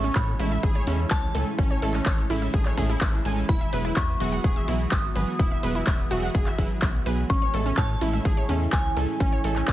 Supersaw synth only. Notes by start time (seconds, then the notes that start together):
0.39 A2 G#3 C#4 A4 E5
0.87 A2 G#3 C#4 A4 E5
1.35 A2 G#3 C#4 A4 G#5
1.82 A2 G#3 C#4 A4 E5
2.30 A2 G#3 C#4 A4 E5
2.78 A2 G#3 C#4 A4 E5
3.25 G#3 C#4 A4 G#5
3.73 F#3 B3 G#4 E5
4.20 F#3 B3 G#4 E5
4.68 F#3 B3 G#4 E5
5.16 F#3 B3 G#4 G#5
5.63 F#3 B3 G#4 E5
6.11 F#3 B3 G#4 E5
6.58 F#3 B3 G#4 E5
7.06 F#3 B3 G#4 G#5
7.54 A2 G#3 C#4 A4 E5
8.01 A2 G#3 C#4 A4 E5
8.49 A2 G#3 C#4 A4 E5
8.97 A2 G#3 C#4 A4 G#5
9.44 A2 G#3 C#4 A4 E5